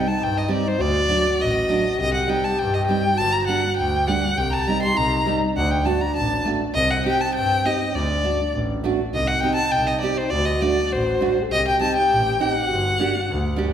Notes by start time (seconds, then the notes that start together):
Already playing: D#4
0.08 A5
0.20 G2 G5
0.38 D#5
0.48 G3 C4 D#4
0.54 D5
0.67 C5
0.79 D2 F#4 D5
1.08 F#3 A3 D4
1.39 A1 D#5
1.69 F#3 A3 D4
1.99 C2 G4 D#5
2.14 F#5
2.27 G3 C4 D#4 G5
2.44 A5
2.58 G2 G5
2.74 D#5
2.87 G3 C4 D#4 G5
3.16 G1 F#4 A5
3.32 A#5
3.47 G3 A#3 D4 F#5
3.77 D2 G5
4.07 G3 A#3 D4 F#5
4.36 C2 G4 G5
4.50 A5 A#5
4.67 G3 C4 D#4 A#5
4.83 C6
4.96 C2 D#4 A#5
5.25 G3 C4 D#4
5.55 D2 D4 F#5
5.71 G5
5.84 A3 D4 F#4 A5
6.01 A#5
6.16 A1 A5
6.45 A3 D4 F#4
6.74 C2 C4 D#5
6.91 F#5
7.05 C4 D#4 G4 G5
7.21 A5
7.35 G2 G5
7.65 C4 D#4 G4 D#5
7.93 D2 D4 D5
8.23 A3 D4 F#4
8.54 A1
8.84 A3 D4 F#4
9.12 C2 D#4 D#5
9.27 F#5
9.41 C4 D#4 G4 G5
9.55 A5
9.71 C2 G5
9.87 D#5
10.01 C4 D#4 G4 D5
10.17 C5
10.30 D2 F#4 D5
10.45 D#5
10.61 A3 D4 F#4 D5
10.92 A1 C5
11.20 A3 D4 F#4
11.43 A4
11.50 C2 G4 D#5
11.68 G5
11.80 C4 D#4 G4 A5
11.97 G5
12.10 A1
12.40 C4 D#4 G4 F#5
12.68 G1 F#4
12.99 A#3 D4 G4
13.30 D2
13.56 A#3 D4 G4